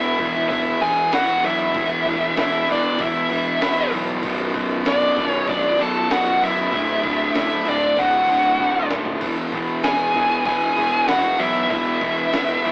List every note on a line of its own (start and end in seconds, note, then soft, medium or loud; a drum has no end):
0.00 0.12 E1 medium
0.00 0.19 E2 medium
0.00 0.18 B2 loud
0.00 0.19 E3 medium
0.00 0.47 E4 medium
0.00 0.47 E5 medium
0.19 0.43 E1 loud
0.19 0.49 E2 medium
0.19 0.50 B2 medium
0.19 0.50 E3 loud
0.19 kick medium
0.19 crash medium
0.49 0.74 E1 medium
0.49 0.80 E2 medium
0.49 0.81 B2 medium
0.49 0.81 E3 medium
0.49 0.79 E4 medium
0.49 0.79 E5 loud
0.49 kick loud
0.49 crash medium
0.81 1.06 E1 medium
0.81 1.11 E2 loud
0.81 1.11 B2 loud
0.81 1.12 E3 loud
0.81 1.10 G#4 medium
0.81 1.13 G#5 loud
0.81 crash medium
1.12 1.37 E1 medium
1.12 1.42 E2 medium
1.12 1.43 B2 medium
1.12 1.43 E3 medium
1.12 1.42 F#4 medium
1.12 1.42 F#5 loud
1.12 snare loud
1.12 crash medium
1.43 1.68 B1 medium
1.43 1.73 E2 medium
1.43 1.74 B2 medium
1.43 1.74 E3 loud
1.43 2.35 E4 medium
1.43 2.38 E5 loud
1.43 crash medium
1.74 1.99 E1 medium
1.74 2.04 E2 medium
1.74 2.05 B2 medium
1.74 2.05 E3 loud
1.74 kick loud
1.74 crash medium
2.05 2.30 E1 medium
2.05 2.36 E2 medium
2.05 2.37 B2 medium
2.05 2.37 E3 medium
2.05 kick medium
2.05 crash medium
2.37 2.61 E1 medium
2.37 2.68 E2 medium
2.37 2.69 B2 medium
2.37 2.69 E3 loud
2.37 2.68 E4 medium
2.37 2.68 E5 medium
2.37 snare medium
2.37 crash medium
2.68 2.93 E1 medium
2.68 2.98 E2 medium
2.68 2.99 B2 medium
2.68 3.00 E3 loud
2.68 2.99 D4 medium
2.68 crash medium
2.72 3.02 D5 medium
2.99 3.23 E1 loud
2.99 3.29 E2 medium
2.99 3.30 B2 medium
2.99 3.30 E3 medium
2.99 3.90 E4 medium
2.99 3.90 E5 medium
2.99 kick loud
2.99 crash medium
3.30 3.54 E1 medium
3.30 3.60 E2 loud
3.30 3.61 B2 loud
3.30 3.61 E3 loud
3.30 crash medium
3.61 3.85 E1 medium
3.61 3.92 E2 medium
3.61 3.92 B2 medium
3.61 3.93 E3 medium
3.61 snare loud
3.61 crash medium
3.92 4.16 B1 medium
3.92 4.22 E2 medium
3.92 4.23 B2 medium
3.92 4.23 E3 medium
3.92 crash medium
4.23 4.48 B0 medium
4.23 4.54 B1 medium
4.23 4.55 F#2 loud
4.23 4.56 B2 loud
4.23 kick loud
4.23 crash medium
4.54 4.78 B0 medium
4.54 4.85 B1 medium
4.54 4.86 F#2 medium
4.54 4.86 B2 medium
4.54 kick medium
4.54 crash medium
4.85 5.10 B0 loud
4.85 5.17 B1 medium
4.85 5.17 F#2 loud
4.85 5.18 B2 medium
4.85 5.28 D4 medium
4.85 5.29 D5 medium
4.85 snare loud
4.85 crash medium
5.16 5.41 B0 medium
5.16 5.47 B1 medium
5.16 5.48 F#2 medium
5.16 5.48 B2 loud
5.16 kick medium
5.16 crash medium
5.28 5.45 C#4 medium
5.28 5.46 C#5 medium
5.48 5.72 B0 medium
5.48 5.78 B1 medium
5.48 5.79 F#2 medium
5.48 5.79 B2 loud
5.48 5.79 D4 medium
5.48 5.81 D5 loud
5.48 kick loud
5.48 crash medium
5.79 6.03 B0 medium
5.79 6.09 B1 loud
5.79 6.10 F#2 loud
5.79 6.10 B2 loud
5.79 6.09 A4 medium
5.79 6.12 A5 loud
5.79 crash medium
6.10 6.34 B0 medium
6.10 6.40 B1 medium
6.10 6.41 F#2 medium
6.10 6.41 B2 medium
6.10 6.41 F#4 medium
6.10 6.44 F#5 loud
6.10 snare loud
6.10 crash medium
6.41 6.65 F#1 medium
6.41 6.71 B1 medium
6.41 6.71 F#2 medium
6.41 6.72 B2 medium
6.41 7.33 E4 medium
6.41 7.36 E5 loud
6.41 crash medium
6.72 6.96 D1 medium
6.72 7.02 D2 loud
6.72 7.02 A2 medium
6.72 7.03 D3 loud
6.72 kick loud
6.72 crash medium
7.03 7.28 D1 medium
7.03 7.33 D2 medium
7.03 7.34 A2 medium
7.03 7.34 D3 loud
7.03 kick medium
7.03 crash medium
7.34 7.59 D1 loud
7.34 7.65 D2 medium
7.34 7.65 A2 loud
7.34 7.66 D3 medium
7.34 7.68 E5 medium
7.34 snare medium
7.34 crash medium
7.39 7.66 E4 medium
7.66 7.90 D1 medium
7.66 7.96 D2 medium
7.66 7.97 A2 loud
7.66 7.97 D3 loud
7.66 8.00 D5 medium
7.66 crash medium
7.70 7.97 D4 medium
7.97 8.21 D1 loud
7.97 8.27 D2 medium
7.97 8.27 A2 medium
7.97 8.28 D3 medium
7.97 8.87 F#5 medium
7.97 kick loud
7.97 crash medium
8.01 8.89 F#4 medium
8.28 8.52 D1 medium
8.28 8.58 D2 loud
8.28 8.58 A2 loud
8.28 8.59 D3 loud
8.28 crash medium
8.59 8.83 D1 medium
8.59 8.88 D2 medium
8.59 8.89 A2 medium
8.59 8.89 D3 loud
8.59 kick medium
8.89 9.14 D#1 medium
8.89 9.19 D2 medium
8.89 9.20 A2 medium
8.89 9.20 D3 medium
8.89 snare medium
9.05 floor tom loud
9.21 9.45 E1 loud
9.21 9.52 E2 medium
9.21 9.52 B2 loud
9.21 9.53 E3 loud
9.21 kick loud
9.21 crash medium
9.52 9.76 E1 medium
9.52 9.83 E2 medium
9.52 9.83 B2 medium
9.52 9.84 E3 medium
9.52 kick medium
9.52 crash medium
9.83 10.08 E1 medium
9.83 10.14 E2 medium
9.83 10.15 B2 medium
9.83 10.16 E3 medium
9.83 10.43 G#4 medium
9.83 10.42 G#5 loud
9.83 snare loud
9.83 crash medium
10.14 10.38 E1 medium
10.14 10.45 E2 medium
10.14 10.46 B2 loud
10.14 10.46 E3 loud
10.14 kick medium
10.14 crash medium
10.45 10.70 E1 medium
10.45 10.76 E2 medium
10.45 10.77 B2 medium
10.45 10.77 E3 medium
10.45 11.05 G#4 medium
10.45 11.07 G#5 medium
10.45 kick loud
10.45 crash medium
10.77 11.01 E1 loud
10.77 11.07 E2 medium
10.77 11.08 B2 medium
10.77 11.08 E3 loud
10.77 crash medium
11.08 11.32 E1 loud
11.08 11.38 E2 medium
11.08 11.39 B2 medium
11.08 11.39 E3 medium
11.08 11.38 F#4 medium
11.08 11.40 F#5 medium
11.08 snare loud
11.08 crash medium
11.39 11.63 B1 medium
11.39 11.70 E2 medium
11.39 11.70 B2 medium
11.39 11.71 E3 medium
11.39 11.68 E4 medium
11.39 11.69 E5 medium
11.39 crash medium
11.69 11.94 E1 medium
11.69 12.00 E2 medium
11.69 12.01 B2 medium
11.69 12.01 E3 loud
11.69 12.72 E4 medium
11.69 12.72 E5 medium
11.69 kick loud
11.69 crash medium
12.01 12.25 E1 medium
12.01 12.31 E2 medium
12.01 12.32 B2 loud
12.01 12.32 E3 loud
12.01 kick medium
12.01 crash medium
12.33 12.57 E1 loud
12.33 12.63 E2 loud
12.33 12.64 B2 medium
12.33 12.65 E3 medium
12.33 snare loud
12.33 crash medium
12.64 12.72 E1 loud
12.64 12.72 E2 medium
12.64 12.72 B2 medium
12.64 12.72 E3 loud
12.64 crash medium